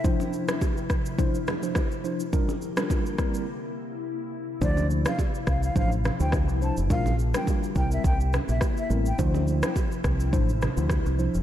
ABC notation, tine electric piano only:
X:1
M:4/4
L:1/16
Q:"Swing 16ths" 1/4=105
K:Dm
V:1 name="Tine electric piano"
[F,DEc]4 z4 [F,DEc] z2 [F,DEc] z2 [F,DEc] z | [G,DFB] z2 [G,DFB]3 [G,CEB]2 z8 | [F,DEc]4 z4 [F,DEc] z2 [F,DEc] z2 [F,DEc] z | [G,DFB] z2 [G,DFB]3 [G,CEB]2 z6 [G,CEB] z |
[F,DEc]4 z4 [F,DEc] z2 [F,DEc] z2 [F,DEc] z |]